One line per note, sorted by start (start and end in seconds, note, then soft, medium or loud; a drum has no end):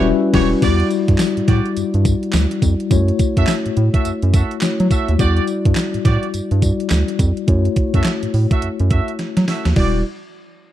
0.00 0.12 E1 loud
0.00 0.33 G3 loud
0.00 0.33 C#4 loud
0.00 0.34 E4 loud
0.00 0.34 F#4 loud
0.00 0.35 B4 loud
0.00 0.30 E5 medium
0.33 0.54 E1 loud
0.33 0.53 G3 loud
0.33 0.54 C#4 loud
0.33 0.54 E4 loud
0.33 0.49 F#4 loud
0.33 0.55 F#4 loud
0.33 0.49 G4 loud
0.33 0.55 B4 medium
0.33 0.49 C#5 loud
0.33 kick loud
0.33 snare loud
0.33 crash medium
0.61 0.83 E2 loud
0.61 2.86 G3 medium
0.61 2.86 E4 medium
0.61 0.89 F#4 medium
0.61 2.87 F#4 medium
0.61 0.89 G4 medium
0.61 0.89 D5 loud
0.61 2.87 D5 medium
0.61 kick loud
0.61 closed hi-hat medium
0.61 crash loud
0.61 tambourine medium
0.80 closed hi-hat medium
0.91 closed hi-hat medium
0.91 tambourine medium
1.08 1.16 G2 medium
1.08 kick medium
1.08 closed hi-hat medium
1.18 snare loud
1.18 clap medium
1.18 closed hi-hat medium
1.18 tambourine medium
1.37 1.42 A2 medium
1.37 closed hi-hat medium
1.47 1.61 A2 medium
1.47 1.68 F#4 medium
1.47 1.69 G4 medium
1.47 1.69 D5 medium
1.47 kick medium
1.47 snare medium
1.47 closed hi-hat medium
1.66 closed hi-hat medium
1.77 1.84 G2 soft
1.77 closed hi-hat loud
1.77 tambourine medium
1.94 2.15 G2 medium
1.94 closed hi-hat medium
2.05 kick loud
2.05 closed hi-hat medium
2.05 tambourine medium
2.23 closed hi-hat medium
2.33 2.46 D2 loud
2.33 snare loud
2.33 clap medium
2.33 closed hi-hat medium
2.33 tambourine loud
2.51 closed hi-hat medium
2.62 2.75 F2 loud
2.62 kick loud
2.62 closed hi-hat medium
2.62 tambourine medium
2.80 closed hi-hat medium
2.90 3.12 F#2 loud
2.90 2.98 G3 medium
2.90 4.58 E4 medium
2.90 4.59 F#4 medium
2.90 4.59 C#5 loud
2.90 kick loud
2.90 closed hi-hat medium
2.90 tambourine medium
2.96 4.60 A3 medium
3.08 closed hi-hat medium
3.19 kick loud
3.19 closed hi-hat medium
3.19 tambourine medium
3.36 3.45 F#2 medium
3.36 3.53 F#4 medium
3.36 3.53 A4 medium
3.36 3.53 E5 loud
3.36 kick medium
3.36 closed hi-hat medium
3.47 snare loud
3.47 clap loud
3.47 closed hi-hat medium
3.47 tambourine medium
3.66 3.70 A2 soft
3.66 closed hi-hat medium
3.77 3.89 A2 loud
3.77 closed hi-hat medium
3.93 4.10 F#4 medium
3.93 4.10 A4 medium
3.93 4.10 E5 medium
3.93 kick loud
3.93 closed hi-hat medium
4.05 4.12 F#2 soft
4.05 closed hi-hat medium
4.05 tambourine medium
4.22 4.43 F#2 loud
4.22 closed hi-hat medium
4.33 4.54 F#4 medium
4.33 4.54 A4 medium
4.33 4.55 E5 medium
4.33 kick loud
4.33 closed hi-hat medium
4.33 tambourine medium
4.51 closed hi-hat medium
4.61 5.19 A3 medium
4.61 5.18 E4 medium
4.61 5.19 F#4 medium
4.61 5.20 C#5 medium
4.61 snare loud
4.61 clap medium
4.61 closed hi-hat medium
4.61 tambourine loud
4.80 4.88 F#3 loud
4.80 closed hi-hat medium
4.90 5.11 F#4 medium
4.90 5.12 A4 medium
4.90 5.12 E5 medium
4.90 kick loud
4.90 closed hi-hat medium
4.90 tambourine medium
5.08 5.17 D#2 loud
5.08 closed hi-hat medium
5.18 5.40 E2 medium
5.18 6.59 G3 medium
5.18 6.59 E4 medium
5.18 5.46 F#4 loud
5.18 6.59 F#4 medium
5.18 5.46 G4 medium
5.18 5.46 D5 loud
5.18 6.60 D5 medium
5.18 kick loud
5.18 closed hi-hat medium
5.18 tambourine medium
5.37 closed hi-hat medium
5.47 closed hi-hat medium
5.47 tambourine medium
5.65 5.73 G2 loud
5.65 kick medium
5.65 closed hi-hat medium
5.75 snare loud
5.75 clap loud
5.75 closed hi-hat medium
5.75 tambourine medium
5.94 5.99 A2 soft
5.94 closed hi-hat medium
6.04 6.18 A2 medium
6.04 6.26 F#4 medium
6.04 6.26 G4 medium
6.04 6.26 D5 medium
6.04 kick loud
6.04 snare medium
6.04 closed hi-hat medium
6.23 closed hi-hat medium
6.34 6.41 G2 soft
6.34 closed hi-hat medium
6.34 tambourine medium
6.51 6.72 G2 loud
6.51 closed hi-hat medium
6.62 7.48 G3 medium
6.62 7.46 E4 medium
6.62 7.47 F#4 medium
6.62 7.48 D5 medium
6.62 kick loud
6.62 closed hi-hat medium
6.62 tambourine medium
6.80 closed hi-hat medium
6.90 7.04 D2 loud
6.90 snare loud
6.90 clap medium
6.90 closed hi-hat medium
6.90 tambourine loud
7.08 closed hi-hat medium
7.19 7.32 F2 loud
7.19 kick loud
7.19 closed hi-hat medium
7.19 tambourine medium
7.37 closed hi-hat medium
7.47 7.69 F#2 loud
7.47 9.72 A3 medium
7.47 9.72 E4 medium
7.47 9.73 F#4 medium
7.47 9.73 C#5 medium
7.47 kick loud
7.47 closed hi-hat medium
7.65 closed hi-hat medium
7.76 kick loud
7.76 closed hi-hat medium
7.94 8.02 F#2 medium
7.94 8.10 F#4 medium
7.94 8.10 A4 medium
7.94 8.10 E5 medium
7.94 kick medium
7.94 closed hi-hat medium
8.04 snare loud
8.04 clap loud
8.04 closed hi-hat medium
8.23 8.27 A2 medium
8.23 closed hi-hat medium
8.34 8.46 A2 medium
8.34 open hi-hat medium
8.51 8.67 F#4 medium
8.51 8.67 A4 medium
8.51 8.68 E5 medium
8.51 kick loud
8.51 closed hi-hat medium
8.62 8.70 F#2 soft
8.62 closed hi-hat medium
8.79 9.01 F#2 loud
8.79 closed hi-hat medium
8.90 9.11 F#4 medium
8.90 9.11 A4 medium
8.90 9.12 E5 medium
8.90 kick loud
8.90 closed hi-hat medium
9.08 closed hi-hat medium
9.19 snare medium
9.19 closed hi-hat medium
9.37 9.45 F#3 medium
9.37 snare medium
9.37 closed hi-hat medium
9.47 9.68 F#4 medium
9.47 9.69 A4 medium
9.47 9.69 E5 medium
9.47 snare loud
9.47 open hi-hat medium
9.65 9.74 D#2 medium
9.65 snare loud
9.65 closed hi-hat medium
9.76 10.03 E1 loud
9.76 10.03 G3 medium
9.76 10.03 E4 medium
9.76 9.98 F#4 medium
9.76 10.03 F#4 medium
9.76 9.99 G4 medium
9.76 10.03 D5 loud
9.76 9.99 D5 loud
9.76 kick loud
9.76 crash medium